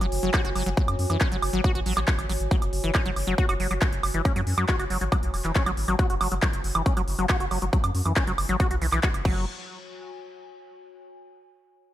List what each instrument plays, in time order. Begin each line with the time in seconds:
Already playing: ambient pad F#4 C#5 G#5
0.01 analog synth bass F#1, acid bass F#3, closed hi-hat, high woodblock
0.12 analog synth bass F#1, open hi-hat
0.23 analog synth bass F#1, acid bass F#3, closed hi-hat
0.34 acid bass F#4, kick, clap, closed hi-hat, high woodblock
0.45 analog synth bass F#1, acid bass F#4, closed hi-hat
0.56 analog synth bass F#1, acid bass F#3, open hi-hat, high woodblock
0.66 analog synth bass F#1, acid bass F#3, closed hi-hat
0.77 acid bass F#3, kick, closed hi-hat
0.88 analog synth bass F#2, closed hi-hat, high woodblock
0.99 analog synth bass F#2, open hi-hat
1.10 analog synth bass F#2, acid bass E3, closed hi-hat, high woodblock
1.21 acid bass C#4, kick, clap, closed hi-hat
1.32 analog synth bass F#1, acid bass F#3, closed hi-hat
1.42 analog synth bass F#1, open hi-hat, high woodblock
1.53 analog synth bass G#1, acid bass F#3, closed hi-hat
1.64 acid bass F#4, kick, closed hi-hat, high woodblock
1.75 analog synth bass A1, acid bass F#4, closed hi-hat
1.86 analog synth bass A1, acid bass F#3, open hi-hat
1.97 analog synth bass A1, acid bass F#3, clap, closed hi-hat, high woodblock
2.08 acid bass F#3, kick, clap, closed hi-hat
2.19 analog synth bass G#1, closed hi-hat, high woodblock
2.29 analog synth bass G#1, acid bass F#3, open hi-hat
2.40 analog synth bass G#1, closed hi-hat
2.51 acid bass F#3, kick, closed hi-hat
2.62 analog synth bass F#1, closed hi-hat, high woodblock
2.73 analog synth bass F#1, open hi-hat
2.84 analog synth bass F#1, acid bass E3, closed hi-hat
2.95 acid bass C#4, kick, clap, closed hi-hat, high woodblock
3.06 analog synth bass F#1, acid bass F#3, closed hi-hat
3.16 analog synth bass F#1, open hi-hat, high woodblock
3.27 analog synth bass F#1, acid bass F#3, closed hi-hat
3.38 acid bass F#4, kick, closed hi-hat
3.49 analog synth bass F#1, acid bass F#4, closed hi-hat, high woodblock
3.60 analog synth bass F#1, acid bass F#3, open hi-hat
3.71 analog synth bass F#1, acid bass F#3, closed hi-hat, high woodblock
3.82 acid bass F#3, kick, clap, closed hi-hat
3.92 analog synth bass F#1, closed hi-hat
4.03 analog synth bass F#1, open hi-hat, high woodblock
4.14 analog synth bass F#1, acid bass E3, closed hi-hat
4.25 acid bass C#4, kick, closed hi-hat, high woodblock
4.36 analog synth bass F#2, acid bass F#3, closed hi-hat
4.47 analog synth bass F#2, open hi-hat
4.58 analog synth bass F#2, acid bass F#3, closed hi-hat, high woodblock
4.69 acid bass F#4, kick, clap, closed hi-hat
4.79 analog synth bass F#1, acid bass F#4, closed hi-hat, high woodblock
4.90 analog synth bass F#1, acid bass F#3, open hi-hat
5.01 analog synth bass G#1, acid bass F#3, closed hi-hat
5.12 acid bass F#3, kick, closed hi-hat, high woodblock
5.23 analog synth bass B1, closed hi-hat
5.34 analog synth bass E1, open hi-hat, high woodblock
5.45 analog synth bass E1, acid bass E3, clap, closed hi-hat
5.56 acid bass C#4, kick, clap, closed hi-hat
5.66 analog synth bass G#1, acid bass F#3, closed hi-hat, high woodblock
5.77 analog synth bass G#1, open hi-hat
5.88 analog synth bass G#1, acid bass F#3, closed hi-hat, high woodblock
5.99 acid bass F#4, kick, closed hi-hat
6.10 analog synth bass F#1, acid bass F#4, closed hi-hat
6.21 analog synth bass F#1, acid bass F#3, open hi-hat, high woodblock
6.32 analog synth bass F#1, acid bass F#3, closed hi-hat
6.42 acid bass F#3, kick, clap, closed hi-hat, high woodblock
6.53 analog synth bass F#1, closed hi-hat
6.64 analog synth bass F#1, open hi-hat
6.75 analog synth bass F#1, acid bass E3, closed hi-hat, high woodblock
6.86 acid bass C#4, kick, closed hi-hat
6.97 analog synth bass F#1, acid bass F#3, closed hi-hat, high woodblock
7.08 analog synth bass F#1, open hi-hat
7.19 analog synth bass F#1, acid bass F#3, closed hi-hat
7.29 acid bass F#4, kick, clap, closed hi-hat, high woodblock
7.40 analog synth bass F#1, acid bass F#4, closed hi-hat
7.51 analog synth bass F#1, acid bass F#3, open hi-hat, high woodblock
7.62 analog synth bass F#1, acid bass F#3, closed hi-hat
7.73 acid bass F#3, kick, closed hi-hat
7.84 analog synth bass F#2, closed hi-hat, high woodblock
7.95 analog synth bass F#2, open hi-hat
8.05 analog synth bass F#2, acid bass E3, closed hi-hat, high woodblock
8.16 acid bass C#4, kick, clap, closed hi-hat
8.27 analog synth bass F#1, acid bass F#3, closed hi-hat
8.38 analog synth bass F#1, open hi-hat, high woodblock
8.49 analog synth bass G#1, acid bass F#3, closed hi-hat
8.60 acid bass F#4, kick, closed hi-hat, high woodblock
8.71 analog synth bass B1, acid bass F#4, closed hi-hat
8.82 analog synth bass B1, acid bass E3, open hi-hat
8.92 analog synth bass B1, acid bass E3, clap, closed hi-hat, high woodblock
9.03 acid bass F#4, kick, clap, closed hi-hat
9.14 analog synth bass F#1, closed hi-hat, high woodblock
9.25 analog synth bass F#1, acid bass F#3, ambient pad F#4, kick, crash
9.32 ambient pad C#5
9.60 ambient pad G#5